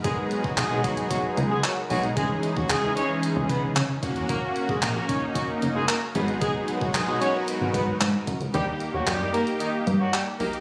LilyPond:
<<
  \new Staff \with { instrumentName = "Analog synth pad" } { \time 4/4 \key gis \minor \tempo 4 = 113 << { <gis fis' ais' b'>1 | <cis e gis'>2.~ <cis e gis'>8 <ais fis'>8~ | <ais fis'>2.~ <ais fis'>8 <gis ais' b'>8~ | <gis ais' b'>1 |
<ais g'>1 | } \\ { dis'1 | cis'1~ | cis'2.~ cis'8 dis'8~ | dis'1~ |
dis'1 | } >> }
  \new Staff \with { instrumentName = "Horn section" } { \time 4/4 \key gis \minor <gis gis'>16 r8 <fis fis'>16 <gis gis'>8 <fis fis'>16 r16 <fis fis'>16 r8 <gis gis'>16 <fis fis'>16 r16 <fis fis'>16 r16 | <gis gis'>16 r8 <fis fis'>16 <gis gis'>8 <cis' cis''>16 r8. <b b'>16 r4 r16 | <ais ais'>16 r8 <gis gis'>16 <ais ais'>8 <cis' cis''>16 r16 <fis fis'>16 r8 <gis gis'>16 <ais ais'>16 r16 <b b'>16 r16 | <gis gis'>16 r8 <fis fis'>16 <gis gis'>8 <cis' cis''>16 r8. <b b'>16 r4 r16 |
<g g'>16 r8 <fis fis'>16 <g g'>8 <ais ais'>16 r16 <dis dis'>16 r8 <fis fis'>16 <g g'>16 r16 <ais ais'>16 r16 | }
  \new Staff \with { instrumentName = "Analog polysynth" } { \time 4/4 \key gis \minor <fis gis b dis' gis'>8. r8 <fis gis b dis' gis'>16 <fis gis b dis' gis'>4. r8 <fis gis b dis' gis'>16 r16 | <e gis cis' dis' gis'>8. r8 <e gis cis' dis' gis'>16 <e gis cis' dis' gis'>4. r8 <ais cis' fis'>8~ | <ais cis' fis'>4 r16 <ais cis' fis'>16 <ais cis' dis'>4. r8 <fis gis b dis' gis'>8~ | <fis gis b dis' gis'>4 r16 <fis gis b dis' fis'>16 <fis gis b dis' fis'>4. r4 |
<ais dis' g'>8. r8 <ais dis' g'>16 <ais dis' g'>4. r8 <ais dis' g'>16 r16 | }
  \new Staff \with { instrumentName = "Analog synth bass" } { \clef bass \time 4/4 \key gis \minor gis,,16 r8 gis,,16 b,,8 r4 cis,8 r8 b,,8 | cis,16 r8 dis,16 cis,8 r8. cis,16 cis8 cis16 r16 fis,,16 e,,16 | fis,,16 r8 gis,,16 ais,,8 r4 fis,,8 r8 gis,,8~ | gis,,16 r8 gis,,16 b,,8 r8. gis,,16 gis,8 gis,16 r16 fis,16 cis,16 |
dis,16 r8 dis,16 fis,8 r4 g,8 r8 b,,8 | }
  \new DrumStaff \with { instrumentName = "Drums" } \drummode { \time 4/4 <hh bd>8 hh16 bd16 <hc hh>8 <hh bd>16 hh16 <hh bd>8 hh8 <hc hh>8 hho16 hh16 | <hh bd>8 hh16 bd16 <hc hh>8 hh8 hh8 <hh bd>8 <hc hh>8 <hh bd>16 hh16 | <hh bd>8 hh16 bd16 <hc hh>8 <hh bd>8 <hh bd>8 hh8 <hc hh>8 hh16 hh16 | <hh bd>8 hh16 bd16 <hc hh>8 hh8 hh8 <hh bd>8 <hc hh>8 <hh bd>16 hh16 |
hh8 hh8 <hc hh>8 hh16 hh16 hh8 hh8 <hc hh>8 hho16 hh16 | }
>>